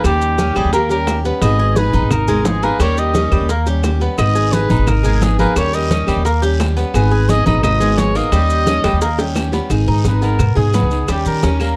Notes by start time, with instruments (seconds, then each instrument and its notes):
0.03 upright bass D#2, steel-string acoustic guitar D#3 G3 C#4 G4, cuban tres G3, nylon-string guitar D#4, trumpet G4, high bongo, claves, maracas
0.21 high conga, maracas
0.38 steel-string acoustic guitar D#3 G3 C#4 G4, cuban tres C#4, high bongo, high conga, maracas
0.55 upright bass D#2, cuban tres G3, steel-string acoustic guitar G3 C#4 G4, nylon-string guitar E4, trumpet G#4, high bongo, high conga, claves, maracas
0.65 upright bass D#2
0.72 cuban tres A#3, nylon-string guitar G4, trumpet A#4, muted steel-string acoustic guitar stroke, high bongo, high conga, maracas
0.89 steel-string acoustic guitar G3 C#4 G4, nylon-string guitar G4, cuban tres G4, trumpet A#4, high bongo, high conga, maracas
1.07 steel-string acoustic guitar D#3 G3 C#4 G4, high bongo, low bongo, high conga, claves, maracas
1.24 steel-string acoustic guitar G3 C#4 G4, cuban tres B3, high bongo, high conga, maracas
1.42 upright bass G#1, steel-string acoustic guitar D#3 G#3 B3 D#4 G#4, nylon-string guitar B4, trumpet D#5, high bongo, high conga, claves, maracas
1.59 cuban tres G#4, high conga
1.76 steel-string acoustic guitar D#3 G#3 B3 D#4 G#4, nylon-string guitar G#4, trumpet B4, high bongo, high conga, maracas
1.93 upright bass G#1, steel-string acoustic guitar B3 D#4 G#4, cuban tres D#4, high conga, maracas
2.02 upright bass G#1
2.11 nylon-string guitar D#4, trumpet A#4, muted steel-string acoustic guitar stroke, high bongo, high conga, low conga, claves, maracas
2.28 cuban tres G#3, steel-string acoustic guitar G#3 B3 D#4 G#4, high conga, low conga, maracas
2.45 steel-string acoustic guitar G#3 B3 D#4 G#4, nylon-string guitar D#4, trumpet G#4, high bongo, low bongo, high conga, maracas
2.62 cuban tres A#3, steel-string acoustic guitar B3 D#4 G#4, nylon-string guitar G#4, trumpet B4, maracas
2.79 upright bass D#2, steel-string acoustic guitar D#3 G3 C#4 G4, cuban tres G3, nylon-string guitar A#4, trumpet C#5, high bongo, high conga, claves, maracas
2.97 nylon-string guitar A#4, trumpet D#5, high conga, maracas
3.14 steel-string acoustic guitar D#3 G3 C#4 G4, cuban tres C#4, high bongo, high conga, maracas
3.31 upright bass D#2, cuban tres G3, steel-string acoustic guitar G3 C#4 G4, high bongo, high conga, claves, maracas
3.40 upright bass D#2
3.49 cuban tres A#3, muted steel-string acoustic guitar stroke, high bongo, high conga, maracas
3.66 steel-string acoustic guitar G3 C#4 G4, cuban tres G4, high bongo, high conga, maracas
3.83 steel-string acoustic guitar D#3 G3 C#4 G4, high bongo, low bongo, high conga, claves, maracas
4.00 steel-string acoustic guitar G3 C#4 G4, cuban tres B3, high bongo, high conga, maracas
4.17 upright bass G#1, steel-string acoustic guitar D#3 G#3 B3 D#4 G#4, nylon-string guitar B4, trumpet D#5, high bongo, high conga, long guiro, claves, maracas
4.35 cuban tres G#4, high conga, maracas
4.51 steel-string acoustic guitar D#3 G#3 B3 D#4 G#4, nylon-string guitar G#4, trumpet B4, high bongo, high conga, short guiro, maracas
4.69 upright bass G#1, steel-string acoustic guitar B3 D#4 G#4, cuban tres D#4, high conga, short guiro, maracas
4.79 upright bass G#1
4.87 nylon-string guitar D#4, trumpet A#4, muted steel-string acoustic guitar stroke, high bongo, high conga, low conga, long guiro, claves, maracas
5.03 cuban tres G#3, steel-string acoustic guitar G#3 B3 D#4 G#4, high conga, low conga, maracas
5.21 steel-string acoustic guitar G#3 B3 D#4 G#4, nylon-string guitar D#4, trumpet G#4, high bongo, low bongo, high conga, short guiro, maracas
5.38 cuban tres A#3, steel-string acoustic guitar B3 D#4 G#4, nylon-string guitar G#4, trumpet B4, high conga, short guiro, maracas
5.55 upright bass D#2, steel-string acoustic guitar D#3 G3 C#4 G4, cuban tres G3, nylon-string guitar A#4, trumpet C#5, high bongo, high conga, long guiro, claves, maracas
5.73 nylon-string guitar A#4, trumpet D#5, high conga, maracas
5.90 steel-string acoustic guitar D#3 G3 C#4 G4, cuban tres C#4, high bongo, high conga, short guiro, maracas
6.07 upright bass D#2, cuban tres G3, steel-string acoustic guitar G3 C#4 G4, high conga, short guiro, claves, maracas
6.16 upright bass D#2
6.25 cuban tres A#3, muted steel-string acoustic guitar stroke, high bongo, high conga, long guiro, maracas
6.42 steel-string acoustic guitar G3 C#4 G4, cuban tres G4, high bongo, high conga, maracas
6.60 steel-string acoustic guitar D#3 G3 C#4 G4, high bongo, low bongo, high conga, short guiro, claves, maracas
6.76 steel-string acoustic guitar G3 C#4 G4, cuban tres B3, high bongo, high conga, short guiro, maracas
6.94 upright bass G#1, steel-string acoustic guitar D#3 G#3 B3 D#4 G#4, nylon-string guitar G#4, trumpet B4, high bongo, high conga, long guiro, claves, maracas
7.11 cuban tres G#4, high conga
7.28 steel-string acoustic guitar D#3 G#3 B3 D#4 G#4, nylon-string guitar B4, trumpet D#5, high bongo, high conga, short guiro, maracas
7.46 upright bass G#1, steel-string acoustic guitar B3 D#4 G#4, cuban tres D#4, nylon-string guitar B4, trumpet D#5, high conga, short guiro, maracas
7.55 upright bass G#1
7.63 nylon-string guitar B4, trumpet D#5, muted steel-string acoustic guitar stroke, high bongo, high conga, low conga, long guiro, claves, maracas
7.80 cuban tres G#3, steel-string acoustic guitar G#3 B3 D#4 G#4, high conga, maracas
7.97 steel-string acoustic guitar G#3 B3 D#4 G#4, nylon-string guitar G#4, trumpet C#5, high bongo, low bongo, high conga, short guiro, maracas
8.14 cuban tres A#3, steel-string acoustic guitar B3 D#4 G#4, nylon-string guitar A#4, trumpet D#5, short guiro, maracas
8.32 upright bass D#2, steel-string acoustic guitar D#3 G3 C#4 G4, cuban tres G3, high bongo, high conga, long guiro, claves, maracas
8.50 high conga, maracas
8.66 steel-string acoustic guitar D#3 G3 C#4 G4, cuban tres C#4, high bongo, high conga, short guiro, maracas
8.84 upright bass D#2, cuban tres G3, steel-string acoustic guitar G3 C#4 G4, high bongo, high conga, short guiro, claves, maracas
8.93 upright bass D#2
9.01 cuban tres A#3, high bongo, high conga, long guiro, maracas
9.18 steel-string acoustic guitar G3 C#4 G4, cuban tres G4, high bongo, high conga, maracas
9.35 steel-string acoustic guitar D#3 G3 C#4 G4, low bongo, high conga, short guiro, claves, maracas
9.52 steel-string acoustic guitar G3 C#4 G4, cuban tres B3, low bongo, high conga, short guiro, maracas
9.69 upright bass G#1, steel-string acoustic guitar D#3 G#3 B3 D#4 G#4, high bongo, high conga, long guiro, claves, maracas
9.87 upright bass G#2, cuban tres D#4, high bongo, high conga
10.04 upright bass G#1, steel-string acoustic guitar D#3 G#3 B3 D#4 G#4, trumpet B4, high bongo, high conga, short guiro, maracas
10.21 cuban tres B3, steel-string acoustic guitar B3 D#4 G#4, trumpet A#4, high bongo, high conga, short guiro, maracas
10.39 upright bass G#2, muted steel-string acoustic guitar stroke, high bongo, high conga, low conga, long guiro, claves, maracas
10.56 upright bass G#2, steel-string acoustic guitar G#3 B3 D#4 G#4, cuban tres G#4, trumpet G#4, high bongo, high conga, low conga
10.73 steel-string acoustic guitar G#3 B3 D#4 G#4, cuban tres B3, high bongo, low bongo, high conga, short guiro, maracas
10.82 upright bass C#2
10.90 steel-string acoustic guitar B3 D#4 G#4, high conga, short guiro, maracas
11.07 upright bass D#2, steel-string acoustic guitar D#3 G3 C#4 G4, cuban tres G3, trumpet G4, high bongo, high conga, long guiro, claves, maracas
11.25 upright bass D#3, trumpet A#4, high bongo, high conga, maracas
11.42 upright bass D#2, steel-string acoustic guitar D#3 G3 C#4 G4, cuban tres C#4, high bongo, high conga, short guiro, maracas
11.59 steel-string acoustic guitar G3 C#4 G4, cuban tres A#3, high bongo, high conga, short guiro, claves, maracas